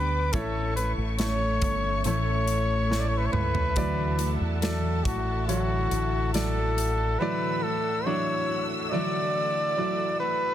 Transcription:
Already playing: D2 G3 B3 D4 G4 B4 D5 G5 D6
0.32 A1 A2 E3 A3 C#4 E4 A4 C#5 E5 C#6, kick, closed hi-hat
0.76 A3 C#4 E4 A4 B4, closed hi-hat
0.98 A1
1.19 A3 C#4 E4 A4 C#5, snare, closed hi-hat
1.62 G1, kick, closed hi-hat
2.04 A1 A2 E3 A3 C#4 E4 A4 C#5, closed hi-hat
2.48 closed hi-hat
2.90 A3 C#4 E4 A4 C#5, snare
3.00 D5
3.09 C#5
3.17 B4
3.26 C#5
3.33 C#2 B4, mid tom
3.55 floor tom
3.76 D2 A2 D3 E3 F#3 A3 E4 F#4 D5 F#5 A5, kick, closed hi-hat
4.19 A3 E4 F#4, closed hi-hat
4.41 E2
4.61 E3 F#3 A3 E4 F#4 A4 D5, snare, closed hi-hat
5.04 A1 F#4, kick, closed hi-hat
5.48 D3 E3 F#3 A3 E4 F#4 C#5, closed hi-hat
5.91 A1, closed hi-hat
6.34 E3 F#3 A3 E4 F#4 A4 D5, snare, closed hi-hat
6.78 closed hi-hat
7.19 A2 D3 E3 F#3 A3 E4 F#4 B4 D5 E6
7.62 A3 E4 F#4 A4
8.05 E3 F#3 A3 D4 E4 F#4 C#5
8.48 A3 E4 F#4
8.91 D3 E3 F#3 A3 E4 F#4 D5
9.77 E3 F#3 A3 E4 F#4 D5
10.20 A3 E4 F#4 B4

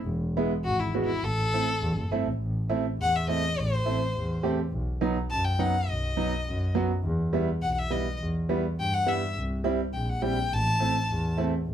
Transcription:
0.06 E1
0.37 G#3 B3 E4
0.64 G#1 F#4
0.80 E4
0.94 G#3 B3 F#4
1.05 E4
1.23 A1 A4
1.53 A3 C4 E4
1.82 E2
1.97 F#1
2.11 G1 A3 C4 E4
2.26 A1
2.39 A1
2.69 A3 C4 E4
2.98 E2 F#5
3.16 E5
3.28 A3 C4 E4 D#5
3.56 A1 C5
3.85 A3 C4 E4
4.14 E2
4.43 A3 C4 G4
4.71 B1
5.01 F#3 B3 D#4
5.30 F#2 A5
5.45 G5
5.59 F#3 B3 D#4 F#5
5.89 B1 D#5
6.17 F#3 B3 D#4
6.46 F#2
6.75 F#3 B3 F#4
7.04 E2
7.33 G3 B3 E4
7.62 B1 F#5
7.73 F#5
7.79 E5
7.90 G3 B3 E4 D#5
8.19 E2
8.49 G3 B3 E4
8.77 G2 G5
8.94 F#5
9.06 G3 B3 E4 E5
9.35 C2
9.64 G3 C4 E4
9.93 A#1 G5
10.04 G5
10.09 F#5
10.22 G3 C4 E4 G5
10.51 A1 A5
10.80 A3 C4 E4
11.08 E2
11.37 A3 C4 E4
11.67 A1

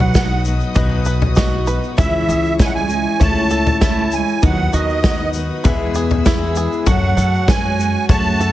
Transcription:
Already playing: B1 B2 F#3 B3 D#4 F#4 B4 D#5 F#5 D#6
0.00 floor tom
0.14 F#3 B3 D#4 F#4 B4 D#5, kick, snare, shaker
0.45 B3 D#4 F#4, shaker
0.60 shaker
0.75 B1 B2 F#3 B3 D#4 F#4 B4 D#5, kick, floor tom, shaker
1.05 B4, shaker
1.21 floor tom, shaker
1.35 F#3 B3 D#4 F#4 B4 D#5, kick, snare, shaker
1.67 B3 D#4 F#4 B4, shaker
1.83 shaker
1.97 C#2 C#3 E3 G#3 C#4 E4 G#4 C#5 E5 C#6, kick, floor tom, shaker
2.28 C#2 G#4, shaker
2.44 shaker
2.58 E3 G#3 C#4 E4 C#5 D#5 G#5, kick, snare, shaker
2.66 F#3 F#5
2.73 G#3 G#5
2.90 shaker
3.20 C#2 C#3 E3 A3 C#4 E4 C#5 E5 A5, kick, floor tom, shaker
3.50 A4, shaker
3.66 floor tom, shaker
3.81 E3 A3 C#4 E4 C#5 E5 A5, kick, snare, shaker
4.12 G#3 G#5, shaker
4.28 shaker
4.42 D#2 D#3 F#3 B3 D#4 F#4 B4 D#5 F#5 D#6, kick, floor tom, shaker
4.47 F#3
4.73 D#2 D#3 F#4 D#5, shaker
4.89 shaker
5.03 D#3 F#3 B3 D#4 F#4 B4 F#5, kick, snare, shaker
5.33 B3 D#4 F#4, shaker
5.64 E2 B2 E3 G#3 B3 E4 G#4 B4 E5 G#5 E6, kick, floor tom, shaker
5.95 G#4, shaker
6.10 floor tom, shaker
6.25 E3 G#3 B3 E4 G#4 B4 E5, kick, snare, shaker
6.56 G#4, shaker
6.72 shaker
6.86 F#1 F#2 C#3 F#3 A3 C#4 F#4 A4 C#5 F#5 C#6, kick, floor tom, shaker
7.17 F#2 A4, shaker
7.34 shaker
7.47 F#3 C#4 F#4 B4 G#5, kick, snare, shaker
7.53 G#3
7.78 F#3 C#4 F#4, shaker
8.09 F#2 C#3 F#3 A3 C#4 F#4 A4 C#5 A5, kick, floor tom, shaker
8.40 A4, shaker

